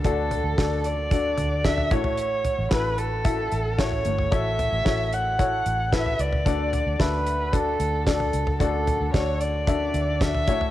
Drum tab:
HH |x-x-x-x-x-x-x-x-|x-x-x-x-x-x-x-x-|x-x-x-x-x-x-x-x-|x-x-x-x-x-x-x-x-|
SD |----o-------o---|----o-------o---|----o-------o---|----o-------o---|
FT |--o-------o--o-o|--o----------o-o|--o----------o-o|--o----------o-o|
BD |o---o---o---o-o-|----o---o---o---|o---o---o---o---|o---o---o---o---|

HH |x-x-x-x-x-x-x-x-|
SD |----o-------o---|
FT |--o----------o-o|
BD |o---o---o---o-o-|